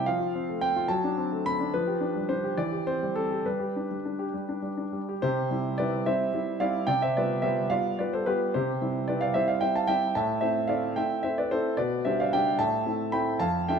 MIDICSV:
0, 0, Header, 1, 2, 480
1, 0, Start_track
1, 0, Key_signature, 0, "major"
1, 0, Tempo, 555042
1, 53, Time_signature, 6, 3, 24, 8
1, 1974, Tempo, 581959
1, 4854, Tempo, 544959
1, 11916, End_track
2, 0, Start_track
2, 0, Title_t, "Grand piano"
2, 0, Program_c, 0, 0
2, 0, Control_c, 0, 64, 127
2, 54, Note_on_c, 0, 77, 92
2, 60, Control_c, 0, 64, 0
2, 61, Note_on_c, 0, 53, 64
2, 174, Note_on_c, 0, 65, 48
2, 241, Control_c, 0, 64, 127
2, 303, Note_on_c, 0, 60, 49
2, 364, Note_off_c, 0, 65, 0
2, 426, Note_on_c, 0, 57, 46
2, 488, Note_off_c, 0, 60, 0
2, 531, Note_off_c, 0, 77, 0
2, 531, Note_on_c, 0, 79, 93
2, 534, Note_on_c, 0, 60, 50
2, 609, Note_off_c, 0, 57, 0
2, 660, Note_on_c, 0, 65, 57
2, 723, Note_off_c, 0, 60, 0
2, 752, Note_off_c, 0, 53, 0
2, 763, Note_on_c, 0, 81, 95
2, 768, Note_on_c, 0, 54, 68
2, 770, Note_off_c, 0, 79, 0
2, 775, Note_off_c, 0, 65, 0
2, 779, Control_c, 0, 64, 0
2, 900, Note_on_c, 0, 62, 56
2, 949, Control_c, 0, 64, 127
2, 1018, Note_on_c, 0, 60, 52
2, 1087, Note_off_c, 0, 62, 0
2, 1142, Note_on_c, 0, 57, 56
2, 1205, Note_off_c, 0, 60, 0
2, 1246, Note_off_c, 0, 81, 0
2, 1262, Note_on_c, 0, 83, 107
2, 1265, Note_on_c, 0, 60, 56
2, 1327, Note_off_c, 0, 57, 0
2, 1383, Note_on_c, 0, 62, 47
2, 1449, Note_off_c, 0, 60, 0
2, 1466, Note_off_c, 0, 54, 0
2, 1495, Note_off_c, 0, 83, 0
2, 1496, Note_off_c, 0, 62, 0
2, 1498, Control_c, 0, 64, 0
2, 1501, Note_on_c, 0, 71, 86
2, 1511, Note_on_c, 0, 53, 66
2, 1621, Note_on_c, 0, 67, 57
2, 1658, Control_c, 0, 64, 127
2, 1736, Note_on_c, 0, 62, 53
2, 1809, Note_off_c, 0, 67, 0
2, 1867, Note_on_c, 0, 55, 44
2, 1927, Note_off_c, 0, 62, 0
2, 1978, Note_on_c, 0, 72, 82
2, 1980, Note_off_c, 0, 71, 0
2, 1984, Note_on_c, 0, 62, 47
2, 2051, Note_off_c, 0, 55, 0
2, 2105, Note_on_c, 0, 67, 55
2, 2167, Note_off_c, 0, 62, 0
2, 2199, Note_off_c, 0, 53, 0
2, 2212, Note_off_c, 0, 72, 0
2, 2215, Note_on_c, 0, 74, 87
2, 2217, Note_off_c, 0, 67, 0
2, 2217, Note_on_c, 0, 52, 63
2, 2218, Control_c, 0, 64, 0
2, 2339, Note_on_c, 0, 67, 48
2, 2402, Control_c, 0, 64, 127
2, 2452, Note_off_c, 0, 74, 0
2, 2458, Note_on_c, 0, 72, 86
2, 2459, Note_on_c, 0, 60, 45
2, 2527, Note_off_c, 0, 67, 0
2, 2588, Note_on_c, 0, 55, 50
2, 2648, Note_off_c, 0, 60, 0
2, 2694, Note_on_c, 0, 69, 85
2, 2695, Note_off_c, 0, 72, 0
2, 2697, Note_on_c, 0, 60, 50
2, 2773, Note_off_c, 0, 55, 0
2, 2820, Note_on_c, 0, 67, 46
2, 2888, Note_off_c, 0, 60, 0
2, 2916, Note_off_c, 0, 52, 0
2, 2935, Note_off_c, 0, 69, 0
2, 2938, Note_off_c, 0, 67, 0
2, 2942, Note_on_c, 0, 55, 57
2, 2943, Note_on_c, 0, 71, 73
2, 2944, Control_c, 0, 64, 0
2, 3060, Note_on_c, 0, 67, 51
2, 3120, Control_c, 0, 64, 127
2, 3196, Note_on_c, 0, 62, 43
2, 3252, Note_off_c, 0, 67, 0
2, 3306, Note_off_c, 0, 55, 0
2, 3318, Note_on_c, 0, 55, 42
2, 3381, Note_off_c, 0, 62, 0
2, 3435, Note_on_c, 0, 62, 45
2, 3503, Note_off_c, 0, 55, 0
2, 3548, Note_on_c, 0, 67, 53
2, 3622, Note_off_c, 0, 62, 0
2, 3669, Control_c, 0, 64, 0
2, 3669, Note_on_c, 0, 55, 48
2, 3739, Note_off_c, 0, 67, 0
2, 3793, Note_on_c, 0, 62, 45
2, 3893, Note_off_c, 0, 55, 0
2, 3906, Note_on_c, 0, 55, 43
2, 3981, Note_off_c, 0, 62, 0
2, 4029, Note_on_c, 0, 62, 43
2, 4098, Note_off_c, 0, 55, 0
2, 4151, Note_off_c, 0, 71, 0
2, 4154, Note_on_c, 0, 55, 48
2, 4221, Note_off_c, 0, 62, 0
2, 4288, Note_on_c, 0, 67, 49
2, 4342, Note_off_c, 0, 55, 0
2, 4396, Note_off_c, 0, 67, 0
2, 4398, Note_on_c, 0, 72, 95
2, 4402, Note_on_c, 0, 48, 65
2, 4410, Note_on_c, 0, 67, 71
2, 4556, Control_c, 0, 64, 127
2, 4622, Note_off_c, 0, 48, 0
2, 4632, Note_on_c, 0, 55, 47
2, 4637, Note_on_c, 0, 60, 44
2, 4644, Note_on_c, 0, 64, 55
2, 4834, Note_off_c, 0, 67, 0
2, 4837, Note_off_c, 0, 55, 0
2, 4839, Note_off_c, 0, 60, 0
2, 4843, Note_off_c, 0, 64, 0
2, 4857, Note_on_c, 0, 74, 92
2, 4860, Note_off_c, 0, 72, 0
2, 4870, Note_on_c, 0, 60, 44
2, 4870, Note_on_c, 0, 71, 65
2, 4871, Note_on_c, 0, 55, 48
2, 4873, Note_on_c, 0, 64, 51
2, 5083, Note_off_c, 0, 60, 0
2, 5084, Note_off_c, 0, 55, 0
2, 5085, Note_off_c, 0, 64, 0
2, 5090, Note_off_c, 0, 71, 0
2, 5100, Note_off_c, 0, 74, 0
2, 5104, Note_on_c, 0, 55, 45
2, 5106, Control_c, 0, 64, 0
2, 5108, Note_on_c, 0, 76, 89
2, 5112, Note_on_c, 0, 64, 52
2, 5114, Note_on_c, 0, 60, 50
2, 5117, Note_on_c, 0, 72, 69
2, 5321, Note_off_c, 0, 55, 0
2, 5325, Note_off_c, 0, 64, 0
2, 5326, Note_off_c, 0, 60, 0
2, 5346, Note_on_c, 0, 55, 47
2, 5348, Note_on_c, 0, 60, 45
2, 5358, Note_on_c, 0, 64, 54
2, 5560, Note_off_c, 0, 72, 0
2, 5562, Note_off_c, 0, 55, 0
2, 5564, Note_off_c, 0, 60, 0
2, 5569, Note_off_c, 0, 64, 0
2, 5582, Note_on_c, 0, 77, 90
2, 5585, Note_on_c, 0, 55, 54
2, 5588, Note_on_c, 0, 74, 76
2, 5589, Note_off_c, 0, 76, 0
2, 5590, Note_on_c, 0, 60, 54
2, 5590, Note_on_c, 0, 64, 59
2, 5803, Note_off_c, 0, 55, 0
2, 5806, Note_off_c, 0, 60, 0
2, 5806, Note_off_c, 0, 64, 0
2, 5812, Note_off_c, 0, 74, 0
2, 5816, Note_on_c, 0, 79, 90
2, 5821, Note_on_c, 0, 48, 63
2, 5826, Note_off_c, 0, 77, 0
2, 5829, Note_on_c, 0, 74, 68
2, 5941, Note_off_c, 0, 74, 0
2, 5943, Note_off_c, 0, 79, 0
2, 5953, Note_on_c, 0, 76, 84
2, 5965, Note_on_c, 0, 72, 60
2, 5983, Control_c, 0, 64, 127
2, 6059, Note_off_c, 0, 48, 0
2, 6070, Note_off_c, 0, 72, 0
2, 6071, Note_off_c, 0, 76, 0
2, 6082, Note_on_c, 0, 74, 80
2, 6087, Note_on_c, 0, 55, 49
2, 6088, Note_on_c, 0, 59, 47
2, 6092, Note_on_c, 0, 65, 47
2, 6093, Note_on_c, 0, 71, 60
2, 6296, Note_off_c, 0, 55, 0
2, 6297, Note_off_c, 0, 59, 0
2, 6299, Note_off_c, 0, 65, 0
2, 6303, Note_on_c, 0, 76, 80
2, 6306, Note_off_c, 0, 71, 0
2, 6309, Note_on_c, 0, 55, 51
2, 6313, Note_on_c, 0, 59, 50
2, 6315, Note_on_c, 0, 72, 58
2, 6317, Note_off_c, 0, 74, 0
2, 6318, Note_on_c, 0, 65, 49
2, 6528, Note_off_c, 0, 55, 0
2, 6530, Note_off_c, 0, 59, 0
2, 6533, Note_off_c, 0, 65, 0
2, 6538, Note_off_c, 0, 72, 0
2, 6548, Note_on_c, 0, 55, 47
2, 6548, Note_on_c, 0, 77, 92
2, 6549, Note_off_c, 0, 76, 0
2, 6557, Note_on_c, 0, 59, 45
2, 6558, Note_on_c, 0, 74, 65
2, 6562, Control_c, 0, 64, 0
2, 6565, Note_on_c, 0, 65, 54
2, 6769, Note_off_c, 0, 55, 0
2, 6774, Note_off_c, 0, 59, 0
2, 6778, Note_off_c, 0, 65, 0
2, 6781, Note_off_c, 0, 74, 0
2, 6793, Note_off_c, 0, 77, 0
2, 6804, Note_on_c, 0, 74, 73
2, 6811, Note_on_c, 0, 55, 42
2, 6812, Note_on_c, 0, 59, 43
2, 6816, Note_on_c, 0, 65, 50
2, 6819, Note_on_c, 0, 71, 66
2, 6920, Note_off_c, 0, 71, 0
2, 6920, Note_off_c, 0, 74, 0
2, 6933, Note_on_c, 0, 72, 80
2, 6941, Note_on_c, 0, 69, 58
2, 7020, Note_off_c, 0, 55, 0
2, 7021, Note_off_c, 0, 59, 0
2, 7023, Note_off_c, 0, 65, 0
2, 7041, Note_off_c, 0, 69, 0
2, 7044, Note_off_c, 0, 72, 0
2, 7045, Note_on_c, 0, 71, 85
2, 7055, Note_on_c, 0, 55, 50
2, 7055, Note_on_c, 0, 59, 51
2, 7055, Note_on_c, 0, 67, 65
2, 7059, Note_on_c, 0, 65, 52
2, 7259, Note_off_c, 0, 59, 0
2, 7260, Note_off_c, 0, 55, 0
2, 7262, Note_off_c, 0, 65, 0
2, 7266, Note_off_c, 0, 67, 0
2, 7278, Note_off_c, 0, 71, 0
2, 7292, Note_on_c, 0, 72, 84
2, 7299, Note_on_c, 0, 67, 62
2, 7300, Note_on_c, 0, 48, 60
2, 7422, Control_c, 0, 64, 127
2, 7515, Note_off_c, 0, 48, 0
2, 7532, Note_on_c, 0, 55, 41
2, 7533, Note_on_c, 0, 60, 46
2, 7537, Note_on_c, 0, 64, 48
2, 7726, Note_off_c, 0, 67, 0
2, 7734, Note_off_c, 0, 55, 0
2, 7735, Note_off_c, 0, 60, 0
2, 7737, Note_off_c, 0, 64, 0
2, 7755, Note_off_c, 0, 72, 0
2, 7763, Note_on_c, 0, 74, 80
2, 7768, Note_on_c, 0, 55, 42
2, 7771, Note_on_c, 0, 60, 46
2, 7775, Note_on_c, 0, 71, 56
2, 7780, Note_on_c, 0, 64, 49
2, 7872, Note_off_c, 0, 71, 0
2, 7873, Note_off_c, 0, 74, 0
2, 7878, Note_on_c, 0, 77, 89
2, 7889, Note_on_c, 0, 74, 64
2, 7972, Note_off_c, 0, 55, 0
2, 7974, Note_off_c, 0, 60, 0
2, 7979, Note_off_c, 0, 64, 0
2, 7989, Note_off_c, 0, 74, 0
2, 7991, Note_off_c, 0, 77, 0
2, 7992, Control_c, 0, 64, 0
2, 7994, Note_on_c, 0, 76, 86
2, 7998, Note_on_c, 0, 55, 46
2, 8003, Note_on_c, 0, 60, 48
2, 8005, Note_on_c, 0, 72, 69
2, 8008, Note_on_c, 0, 64, 52
2, 8107, Note_off_c, 0, 72, 0
2, 8109, Note_off_c, 0, 76, 0
2, 8117, Note_on_c, 0, 77, 81
2, 8127, Note_on_c, 0, 74, 58
2, 8208, Note_off_c, 0, 55, 0
2, 8211, Note_off_c, 0, 60, 0
2, 8213, Note_off_c, 0, 64, 0
2, 8228, Note_off_c, 0, 74, 0
2, 8229, Note_on_c, 0, 79, 83
2, 8230, Note_off_c, 0, 77, 0
2, 8236, Note_on_c, 0, 55, 43
2, 8237, Note_on_c, 0, 60, 46
2, 8242, Note_on_c, 0, 76, 65
2, 8244, Note_on_c, 0, 64, 47
2, 8345, Note_off_c, 0, 76, 0
2, 8346, Note_off_c, 0, 79, 0
2, 8360, Note_on_c, 0, 81, 89
2, 8370, Note_on_c, 0, 77, 65
2, 8446, Note_off_c, 0, 55, 0
2, 8446, Note_off_c, 0, 60, 0
2, 8450, Note_off_c, 0, 64, 0
2, 8465, Note_on_c, 0, 79, 90
2, 8469, Note_off_c, 0, 77, 0
2, 8471, Note_off_c, 0, 81, 0
2, 8471, Note_on_c, 0, 55, 50
2, 8476, Note_on_c, 0, 76, 69
2, 8478, Note_on_c, 0, 60, 51
2, 8480, Note_on_c, 0, 64, 52
2, 8682, Note_off_c, 0, 55, 0
2, 8686, Note_off_c, 0, 60, 0
2, 8687, Note_off_c, 0, 64, 0
2, 8692, Note_off_c, 0, 76, 0
2, 8703, Note_off_c, 0, 79, 0
2, 8710, Note_on_c, 0, 81, 90
2, 8714, Note_on_c, 0, 45, 60
2, 8725, Note_on_c, 0, 76, 70
2, 8891, Control_c, 0, 64, 127
2, 8922, Note_off_c, 0, 76, 0
2, 8935, Note_on_c, 0, 76, 79
2, 8939, Note_off_c, 0, 45, 0
2, 8943, Note_on_c, 0, 72, 66
2, 8944, Note_on_c, 0, 57, 46
2, 8945, Note_off_c, 0, 81, 0
2, 8946, Note_on_c, 0, 60, 44
2, 8949, Note_on_c, 0, 64, 43
2, 9157, Note_off_c, 0, 57, 0
2, 9158, Note_off_c, 0, 60, 0
2, 9159, Note_off_c, 0, 64, 0
2, 9163, Note_off_c, 0, 72, 0
2, 9171, Note_on_c, 0, 77, 81
2, 9176, Note_off_c, 0, 76, 0
2, 9177, Note_on_c, 0, 57, 43
2, 9182, Note_on_c, 0, 60, 47
2, 9185, Note_on_c, 0, 64, 49
2, 9187, Note_on_c, 0, 74, 64
2, 9393, Note_off_c, 0, 57, 0
2, 9396, Note_off_c, 0, 60, 0
2, 9398, Note_off_c, 0, 64, 0
2, 9406, Note_off_c, 0, 74, 0
2, 9414, Note_off_c, 0, 77, 0
2, 9422, Note_on_c, 0, 79, 81
2, 9425, Control_c, 0, 64, 0
2, 9429, Note_on_c, 0, 57, 48
2, 9430, Note_on_c, 0, 60, 47
2, 9435, Note_on_c, 0, 76, 67
2, 9436, Note_on_c, 0, 64, 48
2, 9640, Note_off_c, 0, 57, 0
2, 9641, Note_off_c, 0, 60, 0
2, 9644, Note_off_c, 0, 64, 0
2, 9644, Note_off_c, 0, 76, 0
2, 9657, Note_on_c, 0, 76, 76
2, 9661, Note_off_c, 0, 79, 0
2, 9667, Note_on_c, 0, 57, 45
2, 9668, Note_on_c, 0, 60, 44
2, 9669, Note_on_c, 0, 64, 49
2, 9670, Note_on_c, 0, 72, 64
2, 9777, Note_off_c, 0, 72, 0
2, 9778, Note_off_c, 0, 76, 0
2, 9792, Note_on_c, 0, 74, 81
2, 9801, Note_on_c, 0, 71, 64
2, 9879, Note_off_c, 0, 57, 0
2, 9880, Note_off_c, 0, 60, 0
2, 9881, Note_off_c, 0, 64, 0
2, 9902, Note_off_c, 0, 71, 0
2, 9905, Note_off_c, 0, 74, 0
2, 9908, Note_on_c, 0, 72, 92
2, 9912, Note_on_c, 0, 57, 46
2, 9914, Note_on_c, 0, 69, 63
2, 9916, Note_on_c, 0, 60, 50
2, 9916, Note_on_c, 0, 64, 52
2, 10122, Note_off_c, 0, 57, 0
2, 10124, Note_off_c, 0, 60, 0
2, 10124, Note_off_c, 0, 64, 0
2, 10130, Note_off_c, 0, 69, 0
2, 10136, Note_on_c, 0, 74, 91
2, 10143, Note_on_c, 0, 47, 61
2, 10144, Note_off_c, 0, 72, 0
2, 10145, Note_on_c, 0, 71, 64
2, 10314, Control_c, 0, 64, 127
2, 10365, Note_off_c, 0, 71, 0
2, 10374, Note_off_c, 0, 47, 0
2, 10377, Note_off_c, 0, 74, 0
2, 10379, Note_on_c, 0, 76, 76
2, 10384, Note_on_c, 0, 55, 45
2, 10390, Note_on_c, 0, 72, 64
2, 10392, Note_on_c, 0, 62, 46
2, 10393, Note_on_c, 0, 67, 52
2, 10496, Note_off_c, 0, 72, 0
2, 10498, Note_off_c, 0, 76, 0
2, 10513, Note_on_c, 0, 77, 84
2, 10524, Note_on_c, 0, 74, 66
2, 10597, Note_off_c, 0, 55, 0
2, 10601, Note_off_c, 0, 62, 0
2, 10601, Note_off_c, 0, 67, 0
2, 10623, Note_off_c, 0, 74, 0
2, 10625, Note_off_c, 0, 77, 0
2, 10629, Note_on_c, 0, 79, 88
2, 10634, Note_on_c, 0, 55, 47
2, 10635, Note_on_c, 0, 62, 46
2, 10642, Note_on_c, 0, 76, 64
2, 10644, Note_on_c, 0, 67, 51
2, 10841, Note_off_c, 0, 55, 0
2, 10841, Note_off_c, 0, 62, 0
2, 10846, Note_off_c, 0, 67, 0
2, 10847, Note_off_c, 0, 76, 0
2, 10854, Note_on_c, 0, 81, 98
2, 10859, Note_on_c, 0, 45, 59
2, 10860, Note_on_c, 0, 76, 66
2, 10861, Note_off_c, 0, 79, 0
2, 10867, Control_c, 0, 64, 0
2, 11012, Control_c, 0, 64, 127
2, 11089, Note_off_c, 0, 45, 0
2, 11094, Note_on_c, 0, 60, 45
2, 11097, Note_on_c, 0, 57, 49
2, 11102, Note_on_c, 0, 64, 46
2, 11302, Note_off_c, 0, 76, 0
2, 11309, Note_off_c, 0, 60, 0
2, 11311, Note_off_c, 0, 57, 0
2, 11313, Note_off_c, 0, 64, 0
2, 11326, Note_on_c, 0, 83, 91
2, 11327, Note_on_c, 0, 57, 49
2, 11330, Note_on_c, 0, 60, 50
2, 11333, Note_off_c, 0, 81, 0
2, 11335, Note_on_c, 0, 64, 54
2, 11335, Note_on_c, 0, 79, 69
2, 11545, Note_off_c, 0, 57, 0
2, 11547, Note_off_c, 0, 60, 0
2, 11549, Note_off_c, 0, 64, 0
2, 11557, Note_off_c, 0, 79, 0
2, 11566, Note_on_c, 0, 81, 101
2, 11568, Note_on_c, 0, 41, 66
2, 11569, Note_off_c, 0, 83, 0
2, 11573, Note_on_c, 0, 77, 72
2, 11580, Control_c, 0, 64, 0
2, 11743, Control_c, 0, 64, 127
2, 11797, Note_off_c, 0, 77, 0
2, 11805, Note_off_c, 0, 41, 0
2, 11811, Note_off_c, 0, 81, 0
2, 11821, Note_on_c, 0, 79, 86
2, 11825, Note_on_c, 0, 57, 47
2, 11829, Note_on_c, 0, 62, 47
2, 11834, Note_on_c, 0, 76, 64
2, 11835, Note_on_c, 0, 65, 51
2, 11916, Note_off_c, 0, 57, 0
2, 11916, Note_off_c, 0, 62, 0
2, 11916, Note_off_c, 0, 65, 0
2, 11916, Note_off_c, 0, 76, 0
2, 11916, Note_off_c, 0, 79, 0
2, 11916, End_track
0, 0, End_of_file